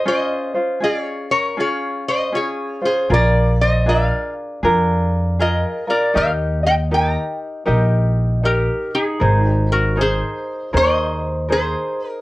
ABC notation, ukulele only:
X:1
M:4/4
L:1/8
Q:"Swing" 1/4=79
K:Db
V:1 name="Ukulele"
[DFAc] [DFc] [DFA]2 [DFA]2 [DFA] [DFc] | [FAB]2 [=DFAB]2 [DFAB]2 [FAB] [DFB] | [E=GBe] [EGe] [EGBe]2 [EGBe]2 [EBe]2 | [EABc]2 [EABc]2 [EABc]2 [EABc]2 |]